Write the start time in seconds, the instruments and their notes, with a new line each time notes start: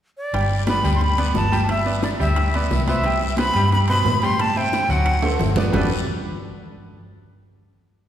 0.17 flute D5
0.33 fingered electric bass G1, grand piano G3 G4 G5, high bongo, high conga, high timbale, long guiro
0.50 high bongo, high conga
0.67 grand piano B3 B4 D5, flute B5, high bongo, high conga, high timbale, low timbale, short guiro
0.84 fingered electric bass D2, grand piano G3 G4 G5, high bongo, high conga, high timbale, short guiro
0.95 flute C6
1.01 flute B5, high bongo, high conga, long guiro
1.18 grand piano B3 B4 D5, high conga, high timbale
1.34 fingered electric bass G1, flute A5, high bongo, low bongo, high conga, low timbale, short guiro
1.52 grand piano G3 G4 G5, high bongo, high conga, high timbale, short guiro
1.69 flute E5, high bongo, high conga, high timbale, long guiro
1.86 grand piano B3 B4 D5, high bongo, high conga
2.02 flute D5, high bongo, high conga, high timbale, low timbale, short guiro
2.20 fingered electric bass D2, grand piano G3 G4 G5, flute E5, high bongo, high conga, short guiro
2.36 high bongo, high conga, high timbale, long guiro
2.54 grand piano B3 B4 D5, high conga, high timbale
2.70 fingered electric bass C2, high bongo, low bongo, high conga, low timbale, short guiro
2.87 grand piano B3 B4 C5, flute E5, high bongo, high conga, high timbale, short guiro
3.04 grand piano G3 G4 G5, high bongo, high timbale, long guiro
3.20 high bongo, high conga
3.37 grand piano B3 B4 C5, flute B5, high bongo, high conga, high timbale, low timbale, short guiro
3.54 fingered electric bass G2, grand piano G3 G4 G5, high bongo, high conga, high timbale, short guiro
3.70 flute B5, high bongo, high conga, long guiro
3.88 grand piano B2 B4 C5, flute B5, high timbale
4.05 fingered electric bass A2, high bongo, low bongo, high conga, low timbale, short guiro
4.22 grand piano G3 G4 G5, flute C6, high bongo, high conga, high timbale, short guiro
4.39 flute A5, high bongo, high conga, high timbale, long guiro
4.56 grand piano C4 C5 E5, flute G5, high bongo, high conga
4.72 high bongo, high conga, high timbale, low timbale, short guiro
4.89 fingered electric bass D2, grand piano F#3 F#4 F#5, flute F#5, high bongo, high conga, short guiro
5.06 high bongo, high conga, high timbale, long guiro
5.22 grand piano A3 A4 C5, high conga, high timbale
5.39 fingered electric bass G1, high bongo, low bongo, low conga, high timbale, short guiro
5.56 grand piano B3 B4 D5, high bongo, low conga, low timbale, short guiro
5.73 fingered electric bass G1, grand piano G3 D4 F#4 G4 A4 B4, flute D5, low bongo, low conga, low timbale, long guiro